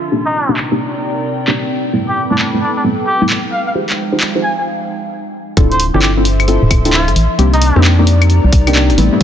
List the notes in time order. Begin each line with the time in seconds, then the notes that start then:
Already playing: D4 F4 E5 C6
0.11 C3 A#3 C4 D4 D#4 G4 A#4 D5 G5
0.16 D#4
0.26 D#4
0.31 A#5
0.45 A#3 C4 D4 D#4 G4 D5
0.57 clap
0.72 A#3 C4 D4 D#4 G4
1.48 A#3 C4 D4 D#4 G4, clap
1.71 A3 E4 B4
1.86 A4
1.93 G3 A3 B3 C4 E4 B5
2.08 G4 G5
2.31 G3 A3 B3 C4 D4 E4
2.39 D4, clap
2.53 G3 A3 B3 C4 E4
2.61 D4
2.76 D4
2.84 G3 A3 B3 C4 E4
3.07 G4
3.21 G3 A3 B3 C4 E4
3.30 clap
3.52 F3 G#3 D#4 F5
3.64 G#3 F5
3.75 D#4 F4 G4 G#4 C5
3.88 F5, clap
4.12 D#4 F4 G4 G#4 C5
4.21 clap
4.35 D#4 F4 G4 G#4 C5
4.43 G#5
4.58 G#5
5.57 D1 F3 C4 D4 E4 F4 A4 C5 E5, kick, closed hi-hat
5.71 C5, closed hi-hat
5.80 open hi-hat
5.87 E5 C6
5.94 G1 C4 D4 E4 F4 G4 A4, cross-stick
6.02 G4, clap
6.17 C4 D4 E4 F4 A4
6.25 open hi-hat
6.40 closed hi-hat, claves
6.48 C4 D4 E4 F4 A4, closed hi-hat
6.62 D1
6.71 D1, kick, open hi-hat, claves
6.85 C4 D4 E4 F4 A4, closed hi-hat
6.93 F4, clap
7.08 A1, cross-stick, closed hi-hat
7.16 A1, open hi-hat
7.39 C2 A#3 C4 D4 D#4 G4 A#4 D5, closed hi-hat
7.43 D5
7.53 D#4, closed hi-hat
7.62 open hi-hat
7.76 F2 A#3 C4 D4 D#4 G4 A#5, cross-stick
7.84 clap
7.99 A#3 C4 D4 D#4 G4
8.07 open hi-hat
8.22 closed hi-hat, claves
8.30 closed hi-hat
8.44 C2
8.53 C2, kick, open hi-hat
8.67 A#3 C4 D4 D#4 G4, closed hi-hat, claves
8.75 A#3 C4 D4 D#4 G4, clap
8.90 G1, cross-stick, closed hi-hat
8.98 A1 G3 A3 B3 C4 E4 B4, open hi-hat
9.09 G3 A3 B3 C4 E4 B5